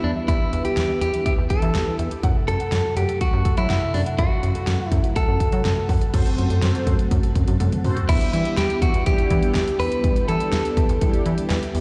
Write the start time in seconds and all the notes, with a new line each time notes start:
Already playing: D3 G3 B3 E4 B4
0.04 E2 E3 D4
0.16 E5
0.28 E2 E4 G4, kick, closed hi-hat
0.40 E3
0.53 E2 E5, closed hi-hat
0.65 G4, closed hi-hat
0.77 E2 E3, snare, closed hi-hat
0.89 E5
1.01 E2 G4, closed hi-hat
1.14 E3, closed hi-hat
1.26 G4 E5, kick, closed hi-hat
1.38 E2 G4
1.50 E3 A4, kick, closed hi-hat
1.62 E3 E5, closed hi-hat
1.75 E2 G4, snare, closed hi-hat
1.87 E3
1.99 E2 E5, closed hi-hat
2.11 G4, closed hi-hat
2.23 F#2 C3 F#3 A3 F#4 A4 F#5, kick, closed hi-hat
2.36 A4
2.48 F#2 F#3 A4, closed hi-hat
2.60 F#5, closed hi-hat
2.72 F#2 A4, snare, closed hi-hat
2.84 F#3
2.97 F#2 G4 F#5, closed hi-hat
3.09 A4, closed hi-hat
3.21 F#3 F#4, kick, closed hi-hat
3.33 F#2 F#5
3.45 A4, kick, closed hi-hat
3.57 F#3 E4, closed hi-hat
3.70 F#2 F#5, snare, closed hi-hat
3.82 A4
3.94 F#2 F#3 D4, open hi-hat
4.06 F#5, closed hi-hat
4.18 F#2 F#4 A4 B4, kick, closed hi-hat
4.31 F#3
4.43 F#2 F#5, closed hi-hat
4.55 A4, closed hi-hat
4.67 F#2 F#3, snare, closed hi-hat
4.80 F#5
4.90 F#2 E4 A4, kick, closed hi-hat
5.04 F#3, closed hi-hat
5.16 A4 F#5, kick, closed hi-hat
5.28 F#2 A4
5.40 F#3, kick, closed hi-hat
5.52 F#3 F#5, closed hi-hat
5.65 F#2 A4, snare, closed hi-hat
5.77 F#3
5.89 F#2 F#5, kick, open hi-hat
6.01 A4, closed hi-hat
6.14 F#2 C3 F#3 A3 C4 F#4 A4 C5, kick, closed hi-hat, crash
6.26 C4, closed hi-hat
6.38 F#2 F#3, closed hi-hat
6.50 F#2 A4, closed hi-hat
6.62 F#2 C4, snare, closed hi-hat
6.75 F#3, closed hi-hat
6.87 F#2 A4, kick, closed hi-hat
6.99 C4, closed hi-hat
7.11 F#2 F#3, kick, closed hi-hat
7.23 A4, closed hi-hat
7.35 F#2 C4, kick, closed hi-hat
7.48 F#2 F#3, closed hi-hat
7.60 F#2 A4, closed hi-hat, high tom
7.72 C4, closed hi-hat, mid tom
7.84 F#2 F#3 C4 F#4 A4 C5, mid tom, open hi-hat
7.97 A4, closed hi-hat, floor tom
8.09 E2 D3 G3 B3 D4 E4 G4, kick, closed hi-hat, crash
8.21 closed hi-hat
8.33 E3 E4, closed hi-hat
8.45 closed hi-hat
8.57 E2 G4, snare, closed hi-hat
8.70 closed hi-hat
8.82 E2 F#4, kick, closed hi-hat
8.94 E2, closed hi-hat
9.06 E2 G3 B3 D4 E4 G4, kick, closed hi-hat
9.18 closed hi-hat
9.30 E3, kick, closed hi-hat
9.43 closed hi-hat
9.55 E2, snare, clap, closed hi-hat
9.68 closed hi-hat
9.79 E2 B4, open hi-hat
9.92 closed hi-hat
10.04 E2 G3 B3 D4 E4 G4, kick, closed hi-hat
10.16 closed hi-hat
10.28 E3 A4, closed hi-hat
10.40 closed hi-hat
10.52 E2, snare, closed hi-hat
10.65 closed hi-hat
10.77 E2, kick, closed hi-hat
10.89 E2, closed hi-hat
11.01 E2 G3 B3 D4 E4 G4, kick, closed hi-hat
11.14 closed hi-hat
11.26 E3, closed hi-hat
11.38 closed hi-hat
11.50 E2, snare, clap, closed hi-hat
11.63 closed hi-hat
11.75 E2, open hi-hat